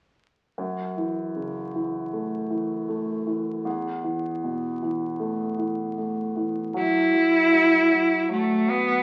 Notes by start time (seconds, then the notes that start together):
0.58 F#2
0.97 E3
1.36 C#3
1.75 E3
2.13 A3
2.50 E3
2.89 A3
3.27 E3
3.65 E2
4.04 E3
4.44 B2
4.82 E3
5.20 A3
5.58 E3
5.98 A3
6.36 E3
6.74 F#3
6.79 E4
7.13 F#3
7.52 F#3
7.90 F#3
8.29 F#3 A3
8.66 F#3 B3